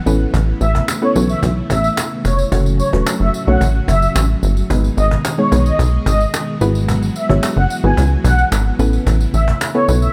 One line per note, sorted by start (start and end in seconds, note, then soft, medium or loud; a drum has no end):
0.00 2.48 E3 medium
0.00 2.48 B3 medium
0.06 0.26 A1 loud
0.06 4.66 C#3 medium
0.06 2.50 A3 medium
0.06 0.83 B3 medium
0.06 0.83 C#4 medium
0.06 0.83 E4 medium
0.06 2.50 E4 medium
0.06 0.83 A4 medium
0.06 0.83 B4 loud
0.06 cajon slap soft
0.06 tambourine medium
0.20 cajon slap soft
0.34 0.54 A1 loud
0.34 cajon bass loud
0.34 tambourine medium
0.48 cajon slap soft
0.61 0.81 A1 loud
0.61 0.70 E5 medium
0.61 cajon slap medium
0.61 tambourine soft
0.75 cajon bass medium
0.88 cajon slap loud
0.88 tambourine medium
1.02 1.13 B3 medium
1.02 1.13 C#4 medium
1.02 1.13 E4 medium
1.02 1.13 A4 medium
1.02 1.13 B4 medium
1.02 1.11 C#5 medium
1.02 cajon slap soft
1.15 1.35 B1 loud
1.15 2.01 B3 medium
1.15 2.01 C#4 medium
1.15 2.01 E4 medium
1.15 2.01 A4 medium
1.15 2.01 B4 medium
1.15 cajon slap soft
1.15 tambourine medium
1.29 1.38 E5 medium
1.29 cajon slap soft
1.29 tambourine soft
1.43 1.63 B1 loud
1.43 cajon bass loud
1.43 tambourine medium
1.56 cajon slap soft
1.70 1.90 A1 medium
1.70 1.88 E5 medium
1.70 cajon bass loud
1.70 tambourine medium
1.84 cajon slap soft
1.84 tambourine soft
1.97 cajon slap loud
1.97 tambourine medium
2.11 cajon slap soft
2.25 2.44 F1 medium
2.25 2.34 C#5 medium
2.25 cajon bass loud
2.25 tambourine medium
2.38 cajon slap soft
2.38 tambourine soft
2.52 2.82 F#1 loud
2.52 4.68 A2 medium
2.52 4.68 F#3 medium
2.52 2.84 A3 medium
2.52 4.68 C#4 medium
2.52 2.84 C#4 medium
2.52 4.68 F#4 medium
2.52 2.84 F#4 medium
2.52 2.84 A4 medium
2.52 2.84 C#5 loud
2.52 cajon bass loud
2.52 tambourine medium
2.66 cajon slap soft
2.66 tambourine soft
2.79 2.88 C#5 medium
2.79 cajon slap medium
2.79 tambourine soft
2.93 3.03 E1 medium
2.93 3.36 A3 medium
2.93 3.36 C#4 medium
2.93 3.36 F#4 medium
2.93 3.36 A4 medium
2.93 3.36 B4 medium
2.93 cajon bass medium
3.07 cajon slap loud
3.07 tambourine medium
3.20 3.30 F#1 medium
3.20 3.29 E5 medium
3.20 cajon slap soft
3.34 cajon slap soft
3.34 tambourine medium
3.47 3.57 B1 medium
3.47 4.33 A3 medium
3.47 4.33 C#4 medium
3.47 4.33 F#4 medium
3.47 4.33 A4 medium
3.47 4.33 C#5 medium
3.47 3.57 F#5 medium
3.47 cajon slap soft
3.61 3.81 A1 loud
3.61 cajon bass loud
3.61 tambourine soft
3.75 cajon slap soft
3.88 4.08 F#1 medium
3.88 4.07 E5 medium
3.88 cajon bass loud
3.88 tambourine medium
4.02 cajon slap soft
4.02 tambourine soft
4.16 4.35 A1 loud
4.16 cajon slap loud
4.16 tambourine medium
4.29 cajon slap soft
4.43 4.63 G1 loud
4.43 cajon slap soft
4.43 tambourine medium
4.56 cajon slap soft
4.56 tambourine soft
4.70 4.90 G#1 loud
4.70 6.59 B2 medium
4.70 6.59 D#3 medium
4.70 5.23 G#3 medium
4.70 8.75 G#3 medium
4.70 5.24 B3 medium
4.70 6.59 D#4 medium
4.70 5.24 D#4 medium
4.70 6.59 G#4 medium
4.70 5.24 G#4 medium
4.70 5.24 B4 loud
4.70 cajon bass loud
4.70 tambourine medium
4.84 cajon slap soft
4.84 tambourine soft
4.97 5.17 G#1 loud
4.97 5.07 D#5 medium
4.97 cajon slap medium
4.97 tambourine soft
5.11 cajon bass medium
5.25 cajon slap loud
5.25 tambourine medium
5.38 5.49 G#3 medium
5.38 5.49 B3 medium
5.38 5.49 D#4 medium
5.38 5.49 G#4 medium
5.38 5.48 C#5 medium
5.38 5.49 C#5 medium
5.38 cajon slap soft
5.52 5.72 B1 loud
5.52 6.37 G#3 medium
5.52 6.37 B3 medium
5.52 6.38 D#4 medium
5.52 6.38 G#4 medium
5.52 6.38 B4 medium
5.52 cajon bass medium
5.52 tambourine medium
5.66 5.75 D#5 medium
5.66 cajon slap soft
5.66 tambourine soft
5.79 5.99 B1 loud
5.79 cajon bass loud
5.79 tambourine medium
5.93 cajon slap soft
6.06 6.26 G#1 loud
6.06 6.25 D#5 medium
6.06 cajon bass loud
6.06 tambourine medium
6.20 cajon slap soft
6.20 tambourine soft
6.34 cajon slap loud
6.34 tambourine medium
6.47 cajon slap soft
6.61 7.10 G#1 loud
6.61 10.12 E3 medium
6.61 8.77 F#3 medium
6.61 7.16 B3 loud
6.61 10.12 B3 medium
6.61 7.16 E4 medium
6.61 7.16 F#4 medium
6.61 8.77 F#4 medium
6.61 7.16 G#4 medium
6.61 7.16 B4 loud
6.61 cajon slap soft
6.61 tambourine medium
6.75 cajon slap soft
6.75 tambourine soft
6.88 cajon bass loud
6.88 tambourine medium
7.02 cajon slap soft
7.02 tambourine soft
7.16 7.25 E5 medium
7.16 cajon slap medium
7.16 tambourine soft
7.29 7.39 G#1 loud
7.29 7.72 B3 medium
7.29 7.72 E4 medium
7.29 7.72 F#4 medium
7.29 7.72 G#4 medium
7.29 7.72 C#5 medium
7.29 cajon bass medium
7.43 cajon slap loud
7.43 tambourine medium
7.57 7.66 F#1 loud
7.57 7.66 F#5 medium
7.57 cajon slap soft
7.70 cajon slap soft
7.70 tambourine medium
7.84 7.94 G#1 loud
7.84 8.69 B3 medium
7.84 8.69 E4 medium
7.84 8.69 F#4 medium
7.84 8.69 G#4 medium
7.84 8.70 B4 medium
7.84 7.93 G#5 medium
7.84 cajon slap soft
7.97 8.17 C#2 loud
7.97 cajon bass loud
7.97 tambourine medium
8.11 cajon slap soft
8.24 8.44 B1 loud
8.24 8.43 F#5 loud
8.24 cajon bass loud
8.24 tambourine medium
8.38 cajon slap soft
8.38 tambourine soft
8.52 8.72 G#1 loud
8.52 cajon slap loud
8.52 tambourine medium
8.66 cajon slap soft
8.79 8.99 A1 loud
8.79 10.13 C#3 medium
8.79 10.13 A3 medium
8.79 9.56 B3 medium
8.79 9.56 C#4 medium
8.79 10.13 E4 medium
8.79 9.56 E4 medium
8.79 9.56 A4 medium
8.79 9.56 B4 loud
8.79 cajon slap soft
8.79 tambourine medium
8.93 cajon slap soft
8.93 tambourine soft
9.07 9.26 A1 loud
9.07 cajon bass loud
9.07 tambourine medium
9.20 cajon slap soft
9.20 tambourine soft
9.34 9.54 A1 medium
9.34 9.43 E5 medium
9.34 cajon slap medium
9.34 tambourine soft
9.48 cajon bass medium
9.61 cajon slap loud
9.61 tambourine medium
9.75 9.85 B3 medium
9.75 9.85 C#4 medium
9.75 9.85 E4 medium
9.75 9.86 A4 medium
9.75 9.86 B4 medium
9.75 9.84 C#5 medium
9.88 10.08 B1 loud
9.88 10.13 B3 medium
9.88 10.13 C#4 medium
9.88 10.13 E4 medium
9.88 10.13 A4 medium
9.88 10.13 B4 medium
9.88 cajon slap soft
9.88 tambourine medium
10.02 10.11 E5 medium
10.02 cajon slap soft
10.02 tambourine soft